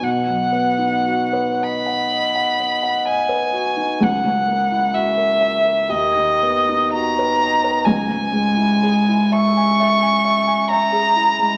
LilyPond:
<<
  \new Staff \with { instrumentName = "Violin" } { \time 4/4 \key b \major \tempo 4 = 64 fis''4. b''4. gis''4 | fis''4 e''4 dis''4 ais''4 | gis''4. cis'''4. ais''4 | }
  \new Staff \with { instrumentName = "Grand piano" } { \time 4/4 \key b \major b,16 fis16 b16 dis'16 fis'16 b'16 dis''16 fis''16 dis''16 fis''16 dis''16 fis''16 dis''16 b'16 fis'16 dis'16 | cis,16 cis16 ais16 e'16 fis'16 ais'16 e''16 ais'16 dis,16 dis16 b16 dis'16 fis'16 b'16 dis''16 b'16 | cis,16 gis,16 gis16 e'16 gis'16 e'16 e''16 gis''16 e''16 gis''16 e''16 gis''16 e''16 gis'16 e'16 gis16 | }
>>